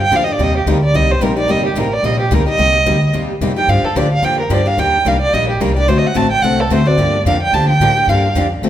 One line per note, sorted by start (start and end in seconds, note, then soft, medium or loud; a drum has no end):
0.00 0.11 G2 medium
0.00 0.17 G5 loud
0.11 0.38 F2 medium
0.11 0.22 D3 medium
0.11 0.22 F3 medium
0.11 0.22 A#3 medium
0.11 0.22 D4 medium
0.11 0.22 G4 loud
0.15 0.25 F5 medium
0.24 0.39 D4 soft
0.24 0.38 G4 medium
0.24 0.34 D#5 medium
0.28 0.38 A#3 soft
0.28 0.44 D5 medium
0.39 0.66 D#2 medium
0.39 0.57 C3 medium
0.39 0.57 G3 medium
0.39 0.57 A#3 medium
0.39 0.58 D#4 medium
0.39 0.58 G4 medium
0.39 0.56 D#5 medium
0.57 0.71 G4 medium
0.66 0.93 D2 medium
0.66 0.77 C3 medium
0.66 0.77 G3 medium
0.66 0.77 A#3 medium
0.66 0.77 D#4 medium
0.66 0.77 G4 medium
0.66 0.83 A#4 medium
0.84 0.97 D5 medium
0.94 1.20 C2 medium
0.94 1.12 C3 medium
0.94 1.13 G3 medium
0.94 1.13 A#3 medium
0.94 1.13 D#4 medium
0.94 1.13 G4 medium
0.94 1.13 D#5 medium
1.11 1.24 C5 medium
1.21 1.48 A#1 medium
1.21 1.31 C3 medium
1.21 1.32 G3 medium
1.21 1.32 A#3 medium
1.21 1.32 D#4 medium
1.21 1.32 G4 medium
1.21 1.37 A#4 medium
1.36 1.48 A#3 soft
1.36 1.48 D#4 medium
1.36 1.48 G4 medium
1.36 1.52 D5 medium
1.48 1.75 G1 medium
1.48 1.67 C3 medium
1.48 1.67 G3 medium
1.48 1.67 A#3 medium
1.48 1.67 D#4 medium
1.48 1.68 G4 medium
1.48 1.65 D#5 medium
1.66 1.79 G4 medium
1.75 2.02 A1 medium
1.75 1.86 C3 medium
1.75 1.86 G3 medium
1.75 1.86 A#3 medium
1.75 1.86 D#4 medium
1.75 1.87 G4 medium
1.75 1.95 A#4 medium
1.93 2.07 D5 loud
2.03 2.30 A#1 medium
2.03 2.22 C3 medium
2.03 2.22 G3 medium
2.03 2.22 A#3 medium
2.03 2.22 D#4 medium
2.03 2.22 G4 medium
2.03 2.20 D#5 medium
2.20 2.35 G4 medium
2.31 2.45 D2 medium
2.31 2.41 C3 medium
2.31 2.41 G3 medium
2.31 2.41 A#3 medium
2.31 2.41 D#4 medium
2.31 2.42 G4 loud
2.31 2.48 A#4 medium
2.46 2.58 A#3 soft
2.46 2.58 D#4 medium
2.46 2.58 G4 medium
2.46 3.11 D#5 loud
2.46 muted upright bass stroke soft
2.58 2.85 C2 medium
2.58 2.77 C3 medium
2.58 2.77 G3 medium
2.58 2.77 A#3 medium
2.58 2.77 D#4 medium
2.58 2.77 G4 medium
2.86 3.13 D2 medium
2.86 2.96 C3 medium
2.86 2.96 G3 medium
2.86 2.96 A#3 medium
2.86 2.96 D#4 medium
2.86 2.97 G4 loud
3.13 3.40 D#2 medium
3.13 3.32 C3 medium
3.13 3.32 G3 medium
3.13 3.32 A#3 medium
3.13 3.32 D#4 medium
3.13 3.32 G4 medium
3.41 3.67 F2 medium
3.41 3.51 C3 medium
3.41 3.51 G3 medium
3.41 3.51 A#3 medium
3.41 3.51 D#4 medium
3.41 3.52 G4 medium
3.56 3.68 A#3 soft
3.56 3.68 D#4 soft
3.56 3.68 G4 medium
3.56 3.70 G5 medium
3.68 3.82 G2 medium
3.68 3.87 D3 medium
3.68 3.87 F3 medium
3.68 3.87 A#3 medium
3.68 3.87 D4 medium
3.68 3.87 G4 medium
3.68 3.86 F5 medium
3.83 3.99 A4 medium
3.83 muted upright bass stroke soft
3.95 4.22 D2 medium
3.95 4.06 D3 medium
3.95 4.06 F3 medium
3.95 4.06 A#3 medium
3.95 4.06 D4 medium
3.95 4.06 G4 medium
3.95 4.12 D5 medium
4.13 4.26 F5 loud
4.22 4.49 F2 medium
4.22 4.41 D3 medium
4.22 4.41 F3 medium
4.22 4.41 A#3 medium
4.22 4.42 D4 medium
4.22 4.42 G4 medium
4.22 4.39 G5 medium
4.41 4.54 A#4 medium
4.50 4.77 G2 medium
4.50 4.60 D3 medium
4.50 4.60 F3 medium
4.50 4.61 A#3 medium
4.50 4.61 D4 medium
4.50 4.61 G4 medium
4.50 4.68 D5 medium
4.66 4.78 A#3 soft
4.66 4.77 D4 medium
4.66 4.77 G4 medium
4.66 4.80 F5 medium
4.77 5.04 D#2 medium
4.77 4.96 D#3 medium
4.77 4.96 G3 medium
4.77 4.97 A#3 medium
4.77 4.97 D4 medium
4.77 4.97 G4 medium
4.77 5.09 G5 medium
5.05 5.32 C2 medium
5.05 5.16 D#3 medium
5.05 5.16 G3 medium
5.05 5.16 A#3 medium
5.05 5.16 D4 medium
5.05 5.16 G4 medium
5.05 5.21 F5 medium
5.21 5.35 D5 loud
5.33 5.60 A#1 medium
5.33 5.52 D#3 medium
5.33 5.52 G3 medium
5.33 5.52 A#3 medium
5.33 5.52 D4 medium
5.33 5.52 G4 medium
5.33 5.49 D#5 medium
5.49 5.62 G4 medium
5.60 5.87 C2 medium
5.60 5.71 D#3 medium
5.60 5.71 G3 medium
5.60 5.71 A#3 medium
5.60 5.71 D4 medium
5.60 5.71 G4 loud
5.60 5.75 A#4 medium
5.76 5.88 A#3 soft
5.76 5.88 D4 medium
5.76 5.88 G4 medium
5.76 5.90 D5 loud
5.88 6.02 D2 medium
5.88 6.06 D3 medium
5.88 6.06 A3 medium
5.88 6.06 C4 medium
5.88 6.06 F#4 medium
5.88 6.07 A4 medium
5.88 5.99 C5 medium
5.98 6.08 D#5 medium
6.06 6.18 F#5 medium
6.14 6.41 A1 medium
6.14 6.25 D3 medium
6.14 6.25 A3 medium
6.14 6.25 C4 medium
6.14 6.25 F#4 loud
6.14 6.26 A4 medium
6.14 6.31 A5 medium
6.31 6.44 G5 loud
6.42 6.69 C2 medium
6.42 6.61 D3 medium
6.42 6.61 A3 medium
6.42 6.62 C4 medium
6.42 6.61 F#4 medium
6.42 6.62 A4 medium
6.42 6.61 F#5 medium
6.60 6.73 A4 medium
6.70 6.97 D2 medium
6.70 6.80 D3 medium
6.70 6.80 A3 medium
6.70 6.81 C4 medium
6.70 6.81 F#4 medium
6.70 6.81 A4 medium
6.70 6.88 C5 medium
6.86 6.98 C4 soft
6.86 6.98 F#4 medium
6.86 6.97 A4 medium
6.86 7.26 D5 loud
6.97 7.24 G2 medium
6.97 7.16 D3 medium
6.97 7.16 F3 medium
6.97 7.16 A#3 medium
6.97 7.17 D4 medium
6.97 7.16 G4 medium
7.25 7.52 F2 medium
7.25 7.36 D3 medium
7.25 7.36 F3 medium
7.25 7.36 A#3 medium
7.25 7.36 D4 medium
7.25 7.36 G4 medium
7.25 7.41 F5 medium
7.42 7.55 G5 loud
7.53 7.79 D2 medium
7.53 7.71 D3 medium
7.53 7.71 F3 medium
7.53 7.71 A#3 medium
7.53 7.72 D4 medium
7.53 7.72 G4 medium
7.53 7.69 A5 loud
7.69 8.10 G5 loud
7.80 8.07 A2 medium
7.80 7.91 D3 medium
7.80 7.91 F3 medium
7.80 7.91 A#3 medium
7.80 7.91 D4 medium
7.80 7.91 G4 loud
7.96 8.08 A#3 soft
7.96 8.08 D4 medium
7.96 8.08 G4 medium
8.07 8.34 G2 medium
8.07 8.27 D3 medium
8.07 8.27 F3 medium
8.07 8.27 A#3 medium
8.07 8.27 D4 medium
8.07 8.27 G4 medium
8.07 8.36 F5 medium
8.35 8.62 F2 medium
8.35 8.45 D3 medium
8.35 8.46 F3 medium
8.35 8.46 A#3 medium
8.35 8.46 D4 loud
8.35 8.46 G4 loud
8.62 8.70 D2 medium
8.62 8.70 D3 medium
8.62 8.70 A3 medium
8.62 8.70 C4 medium
8.62 8.70 F#4 medium
8.62 8.70 A4 medium